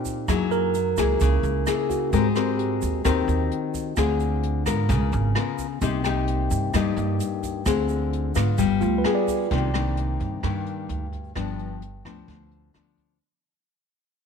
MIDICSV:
0, 0, Header, 1, 5, 480
1, 0, Start_track
1, 0, Key_signature, -3, "minor"
1, 0, Tempo, 461538
1, 290, Time_signature, 4, 2, 24, 8
1, 14822, End_track
2, 0, Start_track
2, 0, Title_t, "Tine electric piano"
2, 0, Program_c, 0, 4
2, 0, Control_c, 0, 64, 127
2, 0, Note_on_c, 0, 63, 47
2, 0, Note_on_c, 0, 67, 51
2, 258, Note_off_c, 0, 67, 0
2, 302, Control_c, 0, 64, 0
2, 493, Note_off_c, 0, 63, 0
2, 514, Control_c, 0, 64, 127
2, 535, Note_on_c, 0, 70, 58
2, 1971, Note_on_c, 0, 66, 37
2, 2168, Note_off_c, 0, 70, 0
2, 2220, Control_c, 0, 64, 0
2, 2374, Control_c, 0, 64, 127
2, 2416, Note_off_c, 0, 66, 0
2, 2679, Note_on_c, 0, 67, 42
2, 4140, Control_c, 0, 64, 0
2, 4321, Note_off_c, 0, 67, 0
2, 9097, Control_c, 0, 64, 127
2, 9162, Note_on_c, 0, 65, 52
2, 9343, Note_on_c, 0, 71, 38
2, 9514, Note_on_c, 0, 74, 40
2, 9875, Note_off_c, 0, 71, 0
2, 9902, Control_c, 0, 64, 0
2, 10083, Note_off_c, 0, 65, 0
2, 10379, Note_off_c, 0, 74, 0
2, 14822, End_track
3, 0, Start_track
3, 0, Title_t, "Nylon-string guitar"
3, 0, Program_c, 1, 24
3, 0, Note_on_c, 1, 46, 52
3, 0, Note_on_c, 1, 60, 54
3, 0, Note_on_c, 1, 65, 55
3, 0, Note_on_c, 1, 67, 66
3, 256, Note_off_c, 1, 60, 0
3, 260, Note_off_c, 1, 65, 0
3, 262, Note_off_c, 1, 67, 0
3, 272, Note_off_c, 1, 46, 0
3, 300, Note_on_c, 1, 54, 53
3, 301, Note_on_c, 1, 58, 54
3, 305, Note_on_c, 1, 64, 54
3, 310, Note_on_c, 1, 68, 53
3, 771, Note_off_c, 1, 58, 0
3, 772, Note_off_c, 1, 64, 0
3, 776, Note_off_c, 1, 68, 0
3, 1022, Note_on_c, 1, 58, 56
3, 1026, Note_on_c, 1, 64, 56
3, 1030, Note_on_c, 1, 68, 59
3, 1230, Note_off_c, 1, 54, 0
3, 1261, Note_on_c, 1, 49, 53
3, 1697, Note_off_c, 1, 58, 0
3, 1697, Note_off_c, 1, 64, 0
3, 1701, Note_off_c, 1, 68, 0
3, 1735, Note_on_c, 1, 58, 47
3, 1741, Note_on_c, 1, 64, 48
3, 1746, Note_on_c, 1, 68, 54
3, 2173, Note_off_c, 1, 58, 0
3, 2176, Note_off_c, 1, 64, 0
3, 2177, Note_off_c, 1, 68, 0
3, 2190, Note_off_c, 1, 49, 0
3, 2214, Note_on_c, 1, 56, 48
3, 2216, Note_on_c, 1, 60, 51
3, 2221, Note_on_c, 1, 67, 58
3, 2222, Note_on_c, 1, 70, 57
3, 2352, Note_off_c, 1, 60, 0
3, 2354, Note_off_c, 1, 67, 0
3, 2356, Note_off_c, 1, 70, 0
3, 2450, Note_on_c, 1, 60, 58
3, 2453, Note_on_c, 1, 67, 55
3, 2462, Note_on_c, 1, 70, 65
3, 3130, Note_off_c, 1, 60, 0
3, 3131, Note_off_c, 1, 67, 0
3, 3136, Note_off_c, 1, 70, 0
3, 3147, Note_off_c, 1, 56, 0
3, 3167, Note_on_c, 1, 51, 52
3, 3170, Note_on_c, 1, 60, 54
3, 3176, Note_on_c, 1, 67, 54
3, 3178, Note_on_c, 1, 70, 59
3, 4089, Note_off_c, 1, 60, 0
3, 4093, Note_off_c, 1, 67, 0
3, 4093, Note_off_c, 1, 70, 0
3, 4103, Note_off_c, 1, 51, 0
3, 4130, Note_on_c, 1, 60, 51
3, 4134, Note_on_c, 1, 50, 50
3, 4136, Note_on_c, 1, 65, 51
3, 4138, Note_on_c, 1, 68, 61
3, 4809, Note_off_c, 1, 60, 0
3, 4812, Note_off_c, 1, 65, 0
3, 4814, Note_off_c, 1, 68, 0
3, 4848, Note_on_c, 1, 59, 49
3, 4856, Note_on_c, 1, 65, 58
3, 4856, Note_on_c, 1, 70, 55
3, 5066, Note_off_c, 1, 50, 0
3, 5086, Note_on_c, 1, 49, 54
3, 5529, Note_off_c, 1, 59, 0
3, 5530, Note_off_c, 1, 65, 0
3, 5533, Note_off_c, 1, 70, 0
3, 5575, Note_on_c, 1, 59, 54
3, 5583, Note_on_c, 1, 65, 52
3, 5585, Note_on_c, 1, 70, 55
3, 5880, Note_off_c, 1, 59, 0
3, 5882, Note_off_c, 1, 65, 0
3, 5885, Note_off_c, 1, 70, 0
3, 6022, Note_off_c, 1, 49, 0
3, 6052, Note_on_c, 1, 48, 55
3, 6057, Note_on_c, 1, 58, 54
3, 6057, Note_on_c, 1, 63, 52
3, 6060, Note_on_c, 1, 67, 55
3, 6252, Note_off_c, 1, 58, 0
3, 6253, Note_off_c, 1, 63, 0
3, 6254, Note_off_c, 1, 67, 0
3, 6298, Note_on_c, 1, 58, 58
3, 6302, Note_on_c, 1, 63, 54
3, 6304, Note_on_c, 1, 67, 58
3, 6974, Note_off_c, 1, 58, 0
3, 6974, Note_off_c, 1, 63, 0
3, 6976, Note_off_c, 1, 67, 0
3, 6985, Note_off_c, 1, 48, 0
3, 7014, Note_on_c, 1, 43, 55
3, 7020, Note_on_c, 1, 58, 54
3, 7020, Note_on_c, 1, 63, 53
3, 7026, Note_on_c, 1, 67, 61
3, 7934, Note_off_c, 1, 58, 0
3, 7935, Note_off_c, 1, 63, 0
3, 7937, Note_off_c, 1, 67, 0
3, 7946, Note_off_c, 1, 43, 0
3, 7968, Note_on_c, 1, 50, 48
3, 7968, Note_on_c, 1, 60, 50
3, 7970, Note_on_c, 1, 65, 47
3, 7977, Note_on_c, 1, 68, 58
3, 8647, Note_off_c, 1, 60, 0
3, 8651, Note_off_c, 1, 65, 0
3, 8652, Note_off_c, 1, 68, 0
3, 8685, Note_on_c, 1, 59, 56
3, 8688, Note_on_c, 1, 65, 57
3, 8903, Note_off_c, 1, 50, 0
3, 8923, Note_on_c, 1, 55, 53
3, 9368, Note_off_c, 1, 59, 0
3, 9368, Note_off_c, 1, 65, 0
3, 9409, Note_on_c, 1, 59, 51
3, 9414, Note_on_c, 1, 65, 52
3, 9417, Note_on_c, 1, 68, 54
3, 9850, Note_off_c, 1, 59, 0
3, 9851, Note_off_c, 1, 65, 0
3, 9854, Note_off_c, 1, 68, 0
3, 9861, Note_off_c, 1, 55, 0
3, 9889, Note_on_c, 1, 48, 51
3, 9893, Note_on_c, 1, 51, 52
3, 9896, Note_on_c, 1, 58, 53
3, 9903, Note_on_c, 1, 62, 54
3, 10091, Note_off_c, 1, 51, 0
3, 10094, Note_off_c, 1, 58, 0
3, 10095, Note_off_c, 1, 62, 0
3, 10134, Note_on_c, 1, 51, 52
3, 10139, Note_on_c, 1, 58, 48
3, 10144, Note_on_c, 1, 62, 52
3, 10813, Note_off_c, 1, 51, 0
3, 10814, Note_off_c, 1, 58, 0
3, 10818, Note_off_c, 1, 62, 0
3, 10825, Note_off_c, 1, 48, 0
3, 10851, Note_on_c, 1, 43, 52
3, 10852, Note_on_c, 1, 51, 50
3, 10856, Note_on_c, 1, 58, 48
3, 10861, Note_on_c, 1, 62, 49
3, 11495, Note_off_c, 1, 51, 0
3, 11498, Note_off_c, 1, 58, 0
3, 11499, Note_off_c, 1, 62, 0
3, 11786, Note_off_c, 1, 43, 0
3, 11808, Note_on_c, 1, 43, 47
3, 11809, Note_on_c, 1, 53, 48
3, 11812, Note_on_c, 1, 59, 44
3, 11815, Note_on_c, 1, 62, 52
3, 12286, Note_off_c, 1, 53, 0
3, 12286, Note_off_c, 1, 59, 0
3, 12290, Note_off_c, 1, 62, 0
3, 12532, Note_on_c, 1, 53, 53
3, 12542, Note_on_c, 1, 59, 45
3, 12544, Note_on_c, 1, 62, 53
3, 12747, Note_off_c, 1, 43, 0
3, 12773, Note_on_c, 1, 50, 48
3, 13214, Note_off_c, 1, 53, 0
3, 13219, Note_off_c, 1, 59, 0
3, 13220, Note_off_c, 1, 62, 0
3, 13255, Note_on_c, 1, 53, 41
3, 13258, Note_on_c, 1, 59, 43
3, 13265, Note_on_c, 1, 62, 45
3, 13696, Note_off_c, 1, 53, 0
3, 13697, Note_off_c, 1, 59, 0
3, 13701, Note_off_c, 1, 62, 0
3, 13710, Note_off_c, 1, 50, 0
3, 14822, End_track
4, 0, Start_track
4, 0, Title_t, "Upright bass"
4, 0, Program_c, 2, 32
4, 293, Note_on_c, 2, 42, 83
4, 969, Note_off_c, 2, 42, 0
4, 1015, Note_on_c, 2, 37, 75
4, 1235, Note_off_c, 2, 37, 0
4, 1258, Note_on_c, 2, 37, 97
4, 1476, Note_off_c, 2, 37, 0
4, 1489, Note_on_c, 2, 37, 86
4, 1712, Note_off_c, 2, 37, 0
4, 2213, Note_on_c, 2, 44, 79
4, 2888, Note_off_c, 2, 44, 0
4, 2937, Note_on_c, 2, 39, 75
4, 3155, Note_off_c, 2, 39, 0
4, 3174, Note_on_c, 2, 39, 92
4, 3394, Note_off_c, 2, 39, 0
4, 3408, Note_on_c, 2, 39, 86
4, 3631, Note_off_c, 2, 39, 0
4, 4135, Note_on_c, 2, 38, 85
4, 4809, Note_off_c, 2, 38, 0
4, 4847, Note_on_c, 2, 44, 77
4, 5091, Note_on_c, 2, 37, 98
4, 5106, Note_off_c, 2, 44, 0
4, 5312, Note_off_c, 2, 37, 0
4, 5333, Note_on_c, 2, 32, 94
4, 5553, Note_off_c, 2, 32, 0
4, 6049, Note_on_c, 2, 36, 84
4, 6726, Note_off_c, 2, 36, 0
4, 6769, Note_on_c, 2, 43, 76
4, 6991, Note_off_c, 2, 43, 0
4, 7011, Note_on_c, 2, 43, 93
4, 7232, Note_off_c, 2, 43, 0
4, 7244, Note_on_c, 2, 43, 88
4, 7468, Note_off_c, 2, 43, 0
4, 7968, Note_on_c, 2, 38, 85
4, 8646, Note_off_c, 2, 38, 0
4, 8694, Note_on_c, 2, 44, 81
4, 8931, Note_on_c, 2, 31, 87
4, 8947, Note_off_c, 2, 44, 0
4, 9152, Note_off_c, 2, 31, 0
4, 9172, Note_on_c, 2, 38, 88
4, 9393, Note_off_c, 2, 38, 0
4, 9890, Note_on_c, 2, 36, 76
4, 10567, Note_off_c, 2, 36, 0
4, 10612, Note_on_c, 2, 43, 71
4, 10833, Note_off_c, 2, 43, 0
4, 10850, Note_on_c, 2, 43, 83
4, 11296, Note_off_c, 2, 43, 0
4, 11327, Note_on_c, 2, 38, 72
4, 11775, Note_off_c, 2, 38, 0
4, 11815, Note_on_c, 2, 31, 79
4, 12491, Note_off_c, 2, 31, 0
4, 12533, Note_on_c, 2, 38, 75
4, 12755, Note_off_c, 2, 38, 0
4, 12774, Note_on_c, 2, 38, 77
4, 13220, Note_off_c, 2, 38, 0
4, 13259, Note_on_c, 2, 38, 65
4, 13703, Note_off_c, 2, 38, 0
4, 14822, End_track
5, 0, Start_track
5, 0, Title_t, "Drums"
5, 53, Note_on_c, 9, 82, 55
5, 56, Note_on_c, 9, 36, 23
5, 60, Note_on_c, 9, 42, 25
5, 157, Note_off_c, 9, 82, 0
5, 160, Note_off_c, 9, 36, 0
5, 164, Note_off_c, 9, 42, 0
5, 294, Note_on_c, 9, 36, 56
5, 295, Note_on_c, 9, 37, 59
5, 295, Note_on_c, 9, 42, 40
5, 295, Note_on_c, 9, 82, 61
5, 398, Note_off_c, 9, 36, 0
5, 399, Note_off_c, 9, 37, 0
5, 399, Note_off_c, 9, 42, 0
5, 399, Note_off_c, 9, 82, 0
5, 534, Note_on_c, 9, 42, 22
5, 536, Note_on_c, 9, 82, 23
5, 638, Note_off_c, 9, 42, 0
5, 640, Note_off_c, 9, 82, 0
5, 774, Note_on_c, 9, 42, 37
5, 775, Note_on_c, 9, 82, 49
5, 878, Note_off_c, 9, 42, 0
5, 879, Note_off_c, 9, 82, 0
5, 1011, Note_on_c, 9, 82, 63
5, 1014, Note_on_c, 9, 36, 23
5, 1017, Note_on_c, 9, 37, 58
5, 1017, Note_on_c, 9, 42, 24
5, 1115, Note_off_c, 9, 82, 0
5, 1118, Note_off_c, 9, 36, 0
5, 1121, Note_off_c, 9, 37, 0
5, 1121, Note_off_c, 9, 42, 0
5, 1250, Note_on_c, 9, 82, 62
5, 1255, Note_on_c, 9, 36, 54
5, 1257, Note_on_c, 9, 42, 39
5, 1354, Note_off_c, 9, 82, 0
5, 1359, Note_off_c, 9, 36, 0
5, 1361, Note_off_c, 9, 42, 0
5, 1493, Note_on_c, 9, 82, 25
5, 1498, Note_on_c, 9, 42, 26
5, 1597, Note_off_c, 9, 82, 0
5, 1602, Note_off_c, 9, 42, 0
5, 1733, Note_on_c, 9, 37, 55
5, 1733, Note_on_c, 9, 42, 42
5, 1733, Note_on_c, 9, 82, 52
5, 1837, Note_off_c, 9, 37, 0
5, 1837, Note_off_c, 9, 42, 0
5, 1837, Note_off_c, 9, 82, 0
5, 1974, Note_on_c, 9, 36, 23
5, 1978, Note_on_c, 9, 42, 27
5, 1982, Note_on_c, 9, 82, 53
5, 2078, Note_off_c, 9, 36, 0
5, 2082, Note_off_c, 9, 42, 0
5, 2086, Note_off_c, 9, 82, 0
5, 2211, Note_on_c, 9, 42, 42
5, 2214, Note_on_c, 9, 36, 56
5, 2216, Note_on_c, 9, 82, 60
5, 2315, Note_off_c, 9, 42, 0
5, 2318, Note_off_c, 9, 36, 0
5, 2320, Note_off_c, 9, 82, 0
5, 2449, Note_on_c, 9, 37, 51
5, 2449, Note_on_c, 9, 42, 26
5, 2450, Note_on_c, 9, 82, 27
5, 2553, Note_off_c, 9, 37, 0
5, 2553, Note_off_c, 9, 42, 0
5, 2554, Note_off_c, 9, 82, 0
5, 2692, Note_on_c, 9, 42, 41
5, 2796, Note_off_c, 9, 42, 0
5, 2931, Note_on_c, 9, 42, 25
5, 2931, Note_on_c, 9, 82, 63
5, 2934, Note_on_c, 9, 36, 22
5, 3035, Note_off_c, 9, 42, 0
5, 3035, Note_off_c, 9, 82, 0
5, 3038, Note_off_c, 9, 36, 0
5, 3172, Note_on_c, 9, 37, 56
5, 3172, Note_on_c, 9, 42, 43
5, 3174, Note_on_c, 9, 36, 52
5, 3176, Note_on_c, 9, 82, 58
5, 3276, Note_off_c, 9, 37, 0
5, 3276, Note_off_c, 9, 42, 0
5, 3278, Note_off_c, 9, 36, 0
5, 3280, Note_off_c, 9, 82, 0
5, 3415, Note_on_c, 9, 42, 28
5, 3418, Note_on_c, 9, 82, 26
5, 3519, Note_off_c, 9, 42, 0
5, 3522, Note_off_c, 9, 82, 0
5, 3654, Note_on_c, 9, 42, 42
5, 3758, Note_off_c, 9, 42, 0
5, 3893, Note_on_c, 9, 36, 24
5, 3895, Note_on_c, 9, 82, 56
5, 3896, Note_on_c, 9, 42, 26
5, 3997, Note_off_c, 9, 36, 0
5, 3999, Note_off_c, 9, 82, 0
5, 4000, Note_off_c, 9, 42, 0
5, 4124, Note_on_c, 9, 82, 62
5, 4128, Note_on_c, 9, 37, 54
5, 4128, Note_on_c, 9, 42, 40
5, 4131, Note_on_c, 9, 36, 58
5, 4228, Note_off_c, 9, 82, 0
5, 4232, Note_off_c, 9, 37, 0
5, 4232, Note_off_c, 9, 42, 0
5, 4235, Note_off_c, 9, 36, 0
5, 4369, Note_on_c, 9, 82, 25
5, 4370, Note_on_c, 9, 42, 25
5, 4473, Note_off_c, 9, 82, 0
5, 4474, Note_off_c, 9, 42, 0
5, 4608, Note_on_c, 9, 42, 37
5, 4712, Note_off_c, 9, 42, 0
5, 4846, Note_on_c, 9, 37, 56
5, 4846, Note_on_c, 9, 42, 25
5, 4849, Note_on_c, 9, 36, 23
5, 4851, Note_on_c, 9, 82, 66
5, 4950, Note_off_c, 9, 37, 0
5, 4950, Note_off_c, 9, 42, 0
5, 4953, Note_off_c, 9, 36, 0
5, 4955, Note_off_c, 9, 82, 0
5, 5081, Note_on_c, 9, 42, 39
5, 5087, Note_on_c, 9, 36, 53
5, 5094, Note_on_c, 9, 82, 57
5, 5185, Note_off_c, 9, 42, 0
5, 5191, Note_off_c, 9, 36, 0
5, 5198, Note_off_c, 9, 82, 0
5, 5323, Note_on_c, 9, 42, 25
5, 5332, Note_on_c, 9, 82, 26
5, 5427, Note_off_c, 9, 42, 0
5, 5436, Note_off_c, 9, 82, 0
5, 5567, Note_on_c, 9, 37, 60
5, 5567, Note_on_c, 9, 42, 40
5, 5671, Note_off_c, 9, 37, 0
5, 5671, Note_off_c, 9, 42, 0
5, 5809, Note_on_c, 9, 82, 58
5, 5810, Note_on_c, 9, 36, 22
5, 5814, Note_on_c, 9, 42, 24
5, 5913, Note_off_c, 9, 82, 0
5, 5914, Note_off_c, 9, 36, 0
5, 5918, Note_off_c, 9, 42, 0
5, 6048, Note_on_c, 9, 36, 55
5, 6048, Note_on_c, 9, 42, 43
5, 6048, Note_on_c, 9, 82, 59
5, 6152, Note_off_c, 9, 36, 0
5, 6152, Note_off_c, 9, 42, 0
5, 6152, Note_off_c, 9, 82, 0
5, 6283, Note_on_c, 9, 37, 52
5, 6283, Note_on_c, 9, 42, 26
5, 6287, Note_on_c, 9, 82, 25
5, 6387, Note_off_c, 9, 37, 0
5, 6387, Note_off_c, 9, 42, 0
5, 6391, Note_off_c, 9, 82, 0
5, 6524, Note_on_c, 9, 42, 40
5, 6628, Note_off_c, 9, 42, 0
5, 6766, Note_on_c, 9, 42, 26
5, 6767, Note_on_c, 9, 36, 23
5, 6768, Note_on_c, 9, 82, 61
5, 6870, Note_off_c, 9, 42, 0
5, 6871, Note_off_c, 9, 36, 0
5, 6872, Note_off_c, 9, 82, 0
5, 7006, Note_on_c, 9, 37, 57
5, 7006, Note_on_c, 9, 42, 43
5, 7008, Note_on_c, 9, 36, 57
5, 7009, Note_on_c, 9, 82, 55
5, 7110, Note_off_c, 9, 37, 0
5, 7110, Note_off_c, 9, 42, 0
5, 7112, Note_off_c, 9, 36, 0
5, 7113, Note_off_c, 9, 82, 0
5, 7250, Note_on_c, 9, 42, 27
5, 7253, Note_on_c, 9, 82, 25
5, 7354, Note_off_c, 9, 42, 0
5, 7357, Note_off_c, 9, 82, 0
5, 7487, Note_on_c, 9, 42, 42
5, 7492, Note_on_c, 9, 82, 54
5, 7591, Note_off_c, 9, 42, 0
5, 7596, Note_off_c, 9, 82, 0
5, 7727, Note_on_c, 9, 36, 23
5, 7728, Note_on_c, 9, 42, 28
5, 7734, Note_on_c, 9, 82, 58
5, 7831, Note_off_c, 9, 36, 0
5, 7832, Note_off_c, 9, 42, 0
5, 7838, Note_off_c, 9, 82, 0
5, 7963, Note_on_c, 9, 37, 58
5, 7963, Note_on_c, 9, 42, 43
5, 7965, Note_on_c, 9, 82, 61
5, 7967, Note_on_c, 9, 36, 57
5, 8067, Note_off_c, 9, 37, 0
5, 8067, Note_off_c, 9, 42, 0
5, 8069, Note_off_c, 9, 82, 0
5, 8071, Note_off_c, 9, 36, 0
5, 8201, Note_on_c, 9, 82, 26
5, 8206, Note_on_c, 9, 42, 24
5, 8305, Note_off_c, 9, 82, 0
5, 8310, Note_off_c, 9, 42, 0
5, 8453, Note_on_c, 9, 42, 38
5, 8557, Note_off_c, 9, 42, 0
5, 8683, Note_on_c, 9, 82, 62
5, 8690, Note_on_c, 9, 36, 23
5, 8695, Note_on_c, 9, 37, 56
5, 8695, Note_on_c, 9, 42, 25
5, 8787, Note_off_c, 9, 82, 0
5, 8794, Note_off_c, 9, 36, 0
5, 8799, Note_off_c, 9, 37, 0
5, 8799, Note_off_c, 9, 42, 0
5, 8924, Note_on_c, 9, 82, 60
5, 8929, Note_on_c, 9, 36, 56
5, 8930, Note_on_c, 9, 42, 38
5, 9028, Note_off_c, 9, 82, 0
5, 9033, Note_off_c, 9, 36, 0
5, 9034, Note_off_c, 9, 42, 0
5, 9167, Note_on_c, 9, 82, 25
5, 9170, Note_on_c, 9, 42, 25
5, 9271, Note_off_c, 9, 82, 0
5, 9274, Note_off_c, 9, 42, 0
5, 9405, Note_on_c, 9, 37, 59
5, 9405, Note_on_c, 9, 42, 37
5, 9509, Note_off_c, 9, 37, 0
5, 9509, Note_off_c, 9, 42, 0
5, 9649, Note_on_c, 9, 36, 23
5, 9649, Note_on_c, 9, 42, 26
5, 9654, Note_on_c, 9, 82, 57
5, 9753, Note_off_c, 9, 36, 0
5, 9753, Note_off_c, 9, 42, 0
5, 9758, Note_off_c, 9, 82, 0
5, 9887, Note_on_c, 9, 42, 40
5, 9891, Note_on_c, 9, 36, 52
5, 9991, Note_off_c, 9, 42, 0
5, 9995, Note_off_c, 9, 36, 0
5, 10129, Note_on_c, 9, 37, 53
5, 10129, Note_on_c, 9, 42, 25
5, 10233, Note_off_c, 9, 37, 0
5, 10233, Note_off_c, 9, 42, 0
5, 10368, Note_on_c, 9, 42, 42
5, 10472, Note_off_c, 9, 42, 0
5, 10610, Note_on_c, 9, 36, 23
5, 10610, Note_on_c, 9, 42, 26
5, 10714, Note_off_c, 9, 36, 0
5, 10714, Note_off_c, 9, 42, 0
5, 10849, Note_on_c, 9, 37, 49
5, 10849, Note_on_c, 9, 42, 39
5, 10851, Note_on_c, 9, 36, 51
5, 10953, Note_off_c, 9, 37, 0
5, 10953, Note_off_c, 9, 42, 0
5, 10955, Note_off_c, 9, 36, 0
5, 11089, Note_on_c, 9, 42, 25
5, 11193, Note_off_c, 9, 42, 0
5, 11327, Note_on_c, 9, 42, 40
5, 11431, Note_off_c, 9, 42, 0
5, 11571, Note_on_c, 9, 42, 23
5, 11572, Note_on_c, 9, 36, 21
5, 11675, Note_off_c, 9, 42, 0
5, 11676, Note_off_c, 9, 36, 0
5, 11811, Note_on_c, 9, 37, 53
5, 11811, Note_on_c, 9, 42, 36
5, 11812, Note_on_c, 9, 36, 52
5, 11915, Note_off_c, 9, 37, 0
5, 11915, Note_off_c, 9, 42, 0
5, 11916, Note_off_c, 9, 36, 0
5, 12052, Note_on_c, 9, 42, 22
5, 12156, Note_off_c, 9, 42, 0
5, 12291, Note_on_c, 9, 42, 35
5, 12395, Note_off_c, 9, 42, 0
5, 12533, Note_on_c, 9, 36, 21
5, 12536, Note_on_c, 9, 37, 51
5, 12536, Note_on_c, 9, 42, 22
5, 12637, Note_off_c, 9, 36, 0
5, 12640, Note_off_c, 9, 37, 0
5, 12640, Note_off_c, 9, 42, 0
5, 12771, Note_on_c, 9, 42, 35
5, 12773, Note_on_c, 9, 36, 54
5, 12875, Note_off_c, 9, 42, 0
5, 12877, Note_off_c, 9, 36, 0
5, 13013, Note_on_c, 9, 42, 22
5, 13117, Note_off_c, 9, 42, 0
5, 13253, Note_on_c, 9, 37, 49
5, 13253, Note_on_c, 9, 42, 36
5, 13357, Note_off_c, 9, 37, 0
5, 13357, Note_off_c, 9, 42, 0
5, 13494, Note_on_c, 9, 36, 21
5, 13494, Note_on_c, 9, 42, 22
5, 13598, Note_off_c, 9, 36, 0
5, 13598, Note_off_c, 9, 42, 0
5, 14822, End_track
0, 0, End_of_file